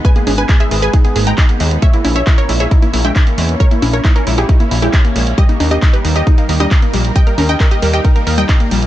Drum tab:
HH |xxoxxxoxxxoxxxox|xxoxxxoxxxoxxxox|xxoxxxoxxxoxxxox|xxoxxxoxxxoxxxox|
CP |----x-------x---|----x-------x---|----x-------x---|----x-------x---|
CG |--oo------------|--oo-------o----|--oo------------|--oo-------o----|
BD |o---o---o---o---|o---o---o---o---|o---o---o---o---|o---o---o---o---|

HH |xxoxxxoxxxoxxxox|
CP |----x-------x---|
CG |--oo------------|
BD |o---o---o---o---|